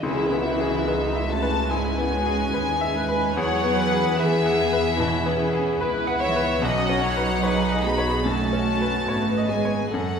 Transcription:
0.03 1.67 C#2 medium
0.03 2.50 C#2 medium
0.03 1.27 E3 medium
0.03 0.42 C#4 medium
0.03 0.45 E4 medium
0.03 0.42 G#4 medium
0.03 1.29 E5 medium
0.03 tam-tam medium
0.31 0.76 B3 soft
0.44 0.87 E4 medium
0.44 0.86 F#4 medium
0.60 1.04 G#4 medium
0.87 1.29 D#4 medium
0.87 1.29 G#4 medium
0.87 1.32 B4 medium
1.15 1.60 E5 medium
1.29 1.70 A3 medium
1.29 3.38 C#4 medium
1.29 1.70 F#4 medium
1.29 1.70 A5 medium
1.43 1.87 B4 medium
1.69 2.15 G#2 medium
1.69 3.34 G#3 medium
1.69 2.13 E4 medium
1.69 3.37 G#5 medium
1.98 2.43 B3 medium
2.13 2.54 F#4 medium
2.26 2.71 G#4 medium
2.54 3.37 D#2 medium
2.54 2.96 G#4 medium
2.54 2.98 B4 medium
2.81 3.26 E5 medium
2.96 3.37 B4 medium
3.08 3.37 B4 medium
3.37 5.81 E2 medium
3.37 4.96 E2 medium
3.37 4.20 F#3 medium
3.37 4.97 B3 medium
3.37 4.18 G#4 medium
3.37 3.77 C#5 medium
3.37 4.18 F#5 loud
3.64 4.08 B3 medium
3.78 4.20 B4 medium
3.92 4.36 G#4 medium
4.19 5.81 E3 medium
4.19 5.00 G#4 medium
4.19 4.99 G#4 medium
4.19 4.63 B4 medium
4.19 5.80 E5 loud
4.46 4.89 F#5 medium
4.73 5.16 B4 medium
4.99 5.43 B2 medium
4.99 5.80 C#4 medium
4.99 5.40 E4 medium
4.99 5.79 E4 medium
5.26 5.70 B3 medium
5.39 5.80 G#4 medium
5.53 5.97 G#4 medium
5.80 6.61 C#2 medium
5.80 6.21 B3 medium
5.80 6.60 E4 medium
5.80 6.24 B4 medium
5.80 6.22 B4 medium
6.07 6.51 F#5 medium
6.21 6.60 E3 medium
6.21 6.62 B3 medium
6.21 6.62 C#5 medium
6.21 6.59 E5 loud
6.36 6.63 B4 medium
6.62 8.21 B1 medium
6.62 9.08 B1 medium
6.62 7.84 F#3 medium
6.62 7.03 C#4 medium
6.62 7.43 F#4 medium
6.62 7.03 D#5 medium
6.62 7.84 F#5 loud
6.90 7.33 C#4 medium
7.02 8.25 D#4 medium
7.02 7.44 C#5 medium
7.17 7.60 B4 medium
7.43 7.83 G#4 medium
7.43 7.85 B4 medium
7.43 7.87 C#5 medium
7.72 8.15 D#5 medium
7.84 8.26 B3 medium
7.84 8.24 F#4 medium
7.84 8.25 G#4 medium
7.84 8.25 B5 medium
7.98 8.42 C#5 medium
8.25 8.69 F#2 soft
8.25 9.50 A3 medium
8.25 8.66 C#4 medium
8.25 9.06 F#4 medium
8.25 9.07 F#4 medium
8.25 9.50 A5 medium
8.53 8.97 C#4 soft
8.67 9.07 C#4 medium
8.82 9.25 B4 soft
9.08 9.90 G#1 medium
9.08 9.92 B3 medium
9.08 9.49 F#4 medium
9.08 9.92 B4 medium
9.08 9.52 C#5 soft
9.37 9.81 D#5 soft
9.50 9.92 G#3 medium
9.50 9.92 G#4 medium
9.50 9.92 G#5 medium
9.65 9.93 C#5 soft
9.93 10.20 F#1 medium
9.93 10.20 F#2 medium
9.93 10.20 F#3 medium
9.93 10.20 C#4 medium
9.93 10.20 A4 medium
9.93 10.20 F#5 medium

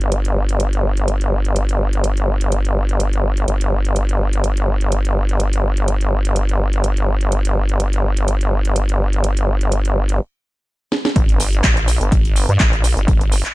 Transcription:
0.00 3.46 G1 medium
0.00 closed hi-hat soft
0.12 closed hi-hat medium
0.25 closed hi-hat soft
0.49 closed hi-hat soft
0.60 closed hi-hat medium
0.73 closed hi-hat soft
0.97 closed hi-hat soft
1.08 closed hi-hat medium
1.21 closed hi-hat soft
1.45 closed hi-hat soft
1.56 closed hi-hat medium
1.69 closed hi-hat soft
1.93 closed hi-hat soft
2.04 closed hi-hat medium
2.17 closed hi-hat soft
2.41 closed hi-hat soft
2.52 closed hi-hat medium
2.65 closed hi-hat soft
2.89 closed hi-hat soft
3.00 closed hi-hat medium
3.13 closed hi-hat soft
3.37 closed hi-hat soft
3.48 10.20 G1 medium
3.48 closed hi-hat medium
3.61 closed hi-hat soft
3.85 closed hi-hat soft
3.96 closed hi-hat medium
4.09 closed hi-hat soft
4.33 closed hi-hat soft
4.44 closed hi-hat medium
4.57 closed hi-hat soft
4.81 closed hi-hat soft
4.92 closed hi-hat medium
5.05 closed hi-hat soft
5.29 closed hi-hat soft
5.40 closed hi-hat medium
5.53 closed hi-hat soft
5.77 closed hi-hat soft
5.88 closed hi-hat medium
6.01 closed hi-hat soft
6.25 closed hi-hat soft
6.36 closed hi-hat medium
6.49 closed hi-hat soft
6.73 closed hi-hat soft
6.84 closed hi-hat medium
6.97 closed hi-hat soft
7.21 closed hi-hat soft
7.32 closed hi-hat medium
7.45 closed hi-hat soft
7.69 closed hi-hat soft
7.80 closed hi-hat medium
7.93 closed hi-hat soft
8.17 closed hi-hat soft
8.28 closed hi-hat medium
8.41 closed hi-hat soft
8.65 closed hi-hat soft
8.76 closed hi-hat medium
8.89 closed hi-hat soft
9.13 closed hi-hat soft
9.24 closed hi-hat medium
9.37 closed hi-hat medium
9.61 closed hi-hat soft
9.72 closed hi-hat medium
9.85 closed hi-hat soft
10.09 closed hi-hat soft
10.92 snare medium
11.05 snare medium
11.16 11.62 G1 loud
11.16 kick loud
11.16 closed hi-hat medium
11.16 cabasa soft
11.29 closed hi-hat medium
11.29 cabasa soft
11.40 closed hi-hat medium
11.40 open hi-hat loud
11.40 cabasa medium
11.53 closed hi-hat soft
11.53 cabasa soft
11.64 11.99 A#1 loud
11.64 kick loud
11.64 snare loud
11.64 clap loud
11.64 closed hi-hat medium
11.64 cabasa soft
11.77 closed hi-hat soft
11.77 cabasa soft
11.87 closed hi-hat medium
11.87 open hi-hat loud
11.87 cabasa medium
12.01 12.47 G1 medium
12.01 closed hi-hat medium
12.01 cabasa soft
12.12 kick loud
12.12 closed hi-hat medium
12.12 cabasa soft
12.25 closed hi-hat soft
12.25 cabasa soft
12.36 closed hi-hat medium
12.36 open hi-hat loud
12.36 cabasa medium
12.49 12.58 G2 loud
12.49 closed hi-hat soft
12.49 cabasa soft
12.60 12.95 A#1 loud
12.60 kick loud
12.60 clap loud
12.60 closed hi-hat medium
12.60 cabasa soft
12.73 closed hi-hat soft
12.73 cabasa soft
12.84 closed hi-hat medium
12.84 open hi-hat loud
12.84 cabasa medium
12.97 13.43 G1 medium
12.97 closed hi-hat soft
12.97 cabasa soft
13.08 kick loud
13.08 closed hi-hat medium
13.08 cabasa soft
13.21 closed hi-hat medium
13.21 cabasa soft
13.32 closed hi-hat medium
13.32 open hi-hat loud
13.32 cabasa medium
13.45 clap soft
13.45 closed hi-hat soft
13.45 cabasa soft

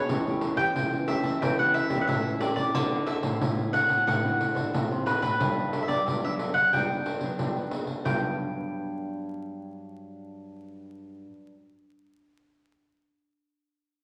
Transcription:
0.00 0.54 C#5 medium
0.09 0.51 E2 loud
0.09 0.72 E3 medium
0.09 0.19 A3 medium
0.09 0.19 C#4 medium
0.09 0.20 G4 medium
0.09 pandeiro medium
0.27 0.54 A3 medium
0.27 0.55 C#4 medium
0.27 0.55 G4 medium
0.27 pandeiro soft
0.41 pandeiro medium
0.56 0.72 E3 medium
0.56 1.03 A3 medium
0.56 1.03 C#4 medium
0.56 1.03 G4 medium
0.56 1.04 G5 loud
0.56 pandeiro medium
0.75 1.18 E3 medium
0.75 1.39 E3 medium
0.75 pandeiro medium
0.93 pandeiro soft
1.08 1.53 A3 medium
1.08 1.53 C#4 medium
1.08 1.53 G4 medium
1.08 1.39 E5 medium
1.08 pandeiro medium
1.23 1.38 E3 medium
1.23 pandeiro medium
1.42 1.84 E3 loud
1.42 2.05 E3 medium
1.42 1.59 G5 medium
1.42 pandeiro medium
1.59 1.86 A3 medium
1.59 1.86 C#4 medium
1.59 1.87 G4 medium
1.59 1.74 F#5 medium
1.59 pandeiro soft
1.74 1.99 E5 medium
1.74 pandeiro medium
1.90 2.05 E2 medium
1.90 2.35 A3 medium
1.90 2.35 C#4 medium
1.90 2.35 G4 medium
1.90 pandeiro medium
2.01 2.07 F#5 medium
2.08 2.75 A2 medium
2.08 2.71 E3 medium
2.08 2.39 E5 medium
2.08 pandeiro medium
2.26 pandeiro soft
2.40 2.71 A3 medium
2.40 2.71 C#4 medium
2.40 2.72 G4 medium
2.40 2.55 D5 medium
2.40 pandeiro medium
2.56 3.03 D5 medium
2.56 pandeiro medium
2.74 3.37 D3 medium
2.74 3.17 D3 loud
2.74 2.85 C4 medium
2.74 2.86 E4 medium
2.74 2.86 F#4 medium
2.74 pandeiro medium
2.91 3.19 C4 medium
2.91 3.19 E4 medium
2.91 3.20 F#4 medium
2.91 pandeiro soft
3.06 3.69 E5 medium
3.06 pandeiro medium
3.22 3.37 A2 medium
3.22 3.67 C4 medium
3.22 3.68 E4 medium
3.22 3.68 F#4 medium
3.22 pandeiro medium
3.40 4.03 A2 medium
3.40 3.83 A2 medium
3.40 pandeiro medium
3.59 pandeiro soft
3.72 4.04 C4 medium
3.72 4.04 E4 medium
3.72 4.05 F#4 medium
3.72 4.06 F#5 medium
3.72 pandeiro medium
3.88 4.03 A2 medium
3.88 pandeiro medium
4.07 4.49 A2 loud
4.07 4.70 D3 medium
4.07 5.03 F#5 medium
4.07 pandeiro medium
4.24 4.52 C4 medium
4.24 4.52 E4 medium
4.24 4.52 F#4 medium
4.24 pandeiro soft
4.41 pandeiro medium
4.55 4.70 D3 medium
4.55 5.00 C4 medium
4.55 5.00 E4 medium
4.55 5.00 F#4 medium
4.55 pandeiro medium
4.73 5.36 A2 medium
4.73 4.87 A2 medium
4.73 pandeiro medium
4.91 5.05 C3 medium
4.91 pandeiro soft
5.05 5.21 B2 medium
5.05 5.27 C4 medium
5.05 5.27 E4 medium
5.05 5.27 F#4 medium
5.05 5.21 B4 medium
5.05 pandeiro medium
5.22 5.37 A2 medium
5.22 5.78 B4 medium
5.22 pandeiro medium
5.39 6.02 G2 medium
5.39 5.96 G2 loud
5.39 5.84 F#3 medium
5.39 5.84 B3 medium
5.39 5.84 D4 medium
5.39 pandeiro medium
5.58 pandeiro soft
5.73 pandeiro medium
5.83 5.89 E5 medium
5.88 6.17 F#3 medium
5.88 6.17 B3 medium
5.88 6.17 D4 medium
5.88 6.19 D5 medium
5.88 pandeiro medium
6.06 6.63 G2 medium
6.06 6.69 D3 medium
6.06 pandeiro medium
6.24 6.67 F#3 medium
6.24 6.68 B3 medium
6.24 6.68 D4 medium
6.24 6.33 E5 medium
6.24 pandeiro soft
6.39 pandeiro medium
6.54 6.70 F#5 medium
6.54 pandeiro soft
6.73 7.35 G2 medium
6.73 7.29 G3 medium
6.73 7.17 B3 soft
6.73 7.17 D4 medium
6.73 7.68 G5 medium
6.73 pandeiro medium
6.91 pandeiro soft
7.06 pandeiro medium
7.21 7.49 F#3 medium
7.21 7.49 B3 medium
7.21 7.50 D4 medium
7.21 pandeiro medium
7.39 8.02 D3 soft
7.39 7.95 G3 medium
7.39 pandeiro medium
7.56 8.00 B3 medium
7.56 8.00 D4 medium
7.56 pandeiro soft
7.71 pandeiro medium
7.87 pandeiro soft
8.03 11.53 G2 medium
8.03 11.26 G2 medium
8.03 11.55 F#3 medium
8.03 11.26 G5 medium
8.03 pandeiro medium
8.07 11.57 B3 medium
8.07 11.59 D4 medium

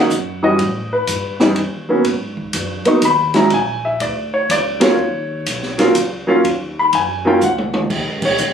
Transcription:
0.00 0.40 F#5 medium
0.10 0.58 F#2 medium
0.10 hi-hat pedal medium
0.43 0.58 E3 medium
0.43 0.58 G3 medium
0.43 0.58 C#4 medium
0.43 0.58 F#4 medium
0.43 0.89 D#5 medium
0.58 1.06 A2 medium
0.58 kick soft
0.58 ride medium
0.93 1.53 B4 medium
1.07 1.55 G2 medium
1.07 kick soft
1.07 hi-hat pedal medium
1.07 ride medium
1.40 1.55 E3 medium
1.40 1.55 G3 medium
1.40 1.56 C#4 medium
1.40 1.56 D#4 medium
1.40 snare medium
1.56 2.04 D#2 medium
1.56 kick soft
1.56 ride medium
1.89 2.04 F#3 medium
1.89 2.04 A#3 medium
1.89 2.04 B3 medium
1.89 2.05 C#4 medium
2.04 2.52 G#2 medium
2.04 kick soft
2.04 ride medium
2.37 kick soft
2.53 2.84 F#2 medium
2.53 kick soft
2.53 hi-hat pedal soft
2.53 ride medium
2.85 3.01 F#3 medium
2.85 3.01 A#3 medium
2.85 3.01 B3 soft
2.85 3.02 D#4 medium
2.85 3.03 C#6 medium
2.85 muted upright bass stroke soft
2.85 ride soft
3.02 3.50 D#2 medium
3.02 3.35 B5 medium
3.02 kick soft
3.02 hi-hat pedal medium
3.02 ride medium
3.34 3.50 F#3 medium
3.34 3.50 G#3 medium
3.34 3.50 C#4 medium
3.34 3.50 E4 medium
3.34 3.52 A#5 medium
3.34 snare soft
3.34 ride soft
3.50 3.99 A#1 medium
3.50 3.84 G#5 medium
3.50 kick soft
3.50 ride medium
3.85 4.01 E5 medium
4.00 4.48 D2 medium
4.00 4.32 D5 medium
4.00 kick soft
4.00 ride medium
4.34 4.49 C#5 medium
4.49 4.97 C#2 medium
4.49 4.81 D5 medium
4.49 kick soft
4.49 hi-hat pedal medium
4.49 ride medium
4.80 4.96 F#3 medium
4.80 4.96 A#3 medium
4.80 4.96 C#4 medium
4.80 4.97 F4 medium
4.80 5.92 C#5 medium
4.80 snare medium
4.80 ride medium
4.98 5.45 D#2 medium
5.46 5.94 B1 medium
5.46 kick soft
5.46 hi-hat pedal medium
5.46 ride medium
5.63 snare soft
5.78 5.94 F#3 medium
5.78 5.94 A#3 medium
5.78 5.94 C#4 medium
5.78 5.94 F4 medium
5.78 snare soft
5.78 ride soft
5.95 6.43 C#2 medium
5.95 kick soft
5.95 hi-hat pedal medium
5.95 ride medium
6.27 6.42 F#3 medium
6.27 6.42 A#3 medium
6.27 6.43 C#4 medium
6.27 6.43 F4 medium
6.44 6.91 D#2 medium
6.44 kick soft
6.44 ride medium
6.79 6.94 B5 medium
6.93 7.40 F#2 medium
6.93 7.25 G#5 medium
6.93 kick soft
6.93 ride medium
7.25 7.40 F#3 medium
7.25 7.40 A#3 medium
7.25 7.41 C#4 medium
7.25 7.41 F4 medium
7.25 7.42 G5 medium
7.41 7.89 C#2 medium
7.41 7.81 F#5 medium
7.41 hi-hat pedal medium
7.41 mid tom soft
7.58 mid tom medium
7.74 mid tom medium
7.90 8.07 D#2 medium
7.90 kick medium
7.90 crash medium
8.07 8.22 C#2 medium
8.22 8.38 A#1 medium
8.22 8.53 C#5 medium
8.22 kick medium
8.22 crash medium
8.38 8.53 C#2 medium
8.38 hi-hat pedal medium

